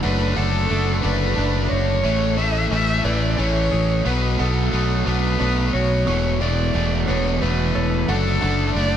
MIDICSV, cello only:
0, 0, Header, 1, 2, 480
1, 0, Start_track
1, 0, Key_signature, 3, "major"
1, 0, Tempo, 671141
1, 20, Time_signature, 6, 3, 24, 8
1, 6415, End_track
2, 0, Start_track
2, 0, Title_t, "Cello"
2, 0, Program_c, 0, 42
2, 12, Note_on_c, 0, 71, 104
2, 257, Note_on_c, 0, 69, 109
2, 268, Note_off_c, 0, 71, 0
2, 729, Note_off_c, 0, 69, 0
2, 733, Note_on_c, 0, 71, 102
2, 1208, Note_on_c, 0, 73, 106
2, 1219, Note_off_c, 0, 71, 0
2, 1694, Note_on_c, 0, 76, 106
2, 1704, Note_off_c, 0, 73, 0
2, 1932, Note_off_c, 0, 76, 0
2, 1937, Note_on_c, 0, 76, 119
2, 2178, Note_on_c, 0, 74, 102
2, 2188, Note_off_c, 0, 76, 0
2, 2427, Note_on_c, 0, 73, 118
2, 2438, Note_off_c, 0, 74, 0
2, 2908, Note_on_c, 0, 71, 99
2, 2919, Note_off_c, 0, 73, 0
2, 3142, Note_on_c, 0, 69, 86
2, 3152, Note_off_c, 0, 71, 0
2, 3615, Note_on_c, 0, 71, 102
2, 3625, Note_off_c, 0, 69, 0
2, 4091, Note_off_c, 0, 71, 0
2, 4095, Note_on_c, 0, 73, 109
2, 4585, Note_on_c, 0, 74, 98
2, 4596, Note_off_c, 0, 73, 0
2, 5053, Note_off_c, 0, 74, 0
2, 5058, Note_on_c, 0, 73, 102
2, 5302, Note_on_c, 0, 71, 95
2, 5313, Note_off_c, 0, 73, 0
2, 5787, Note_on_c, 0, 69, 109
2, 5798, Note_off_c, 0, 71, 0
2, 6258, Note_off_c, 0, 69, 0
2, 6262, Note_on_c, 0, 74, 111
2, 6415, Note_off_c, 0, 74, 0
2, 6415, End_track
0, 0, End_of_file